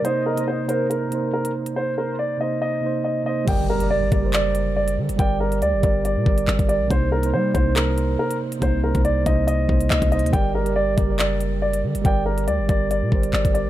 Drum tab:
CC |------------------------------------------------|------------------------------------------------|x-----------------------------------------------|------------------------------------------------|
HH |x--------x--------x-----x-----x--------x-----x--|------------------------------------------------|x--------x--------x-----x-----x--------x-----x--|x--------x--x-----x-----x--------x-----x--x-----|
CP |------------------------------------------------|------------------------------------------------|------------------------x-----------------------|------------------------------------x-----------|
BD |------------------------------------------------|------------------------------------------------|o-----------------o-----------------------------|o-----------------o-----------o--------o--------|

CC |------------------------------------------------|------------------------------------------------|------------------------------------------------|------------------------------------------------|
HH |x--------x--------x-----x-----x--------x-----x--|x--------x--x-----x-----x--------x-----x--x-x-x-|x--------x--------x-----x-----x--------x-----x--|x--------x--x-----x-----x--------x-----x--x-----|
CP |------------------------x-----------------------|------------------------------------x-----------|------------------------x-----------------------|------------------------------------x-----------|
BD |o-----------------o-----------------------------|o--------o--------o-----------o--------o--------|o-----------------o-----------------------------|o-----------------o-----------o--------o--------|